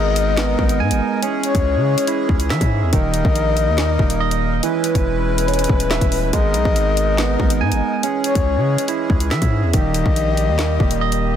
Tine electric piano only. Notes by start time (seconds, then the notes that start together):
Already playing: G#3
0.38 B3
0.80 G#5
1.23 C#4
2.08 E4
2.50 E5
2.93 D#3
3.78 A#3
4.20 D#5
4.63 E3
5.48 C#4
5.91 E5
6.33 G#3
7.18 B3
7.61 G#5
8.03 C#4
8.89 E4
9.31 E5
9.74 D#3
10.59 A#3
11.01 D#5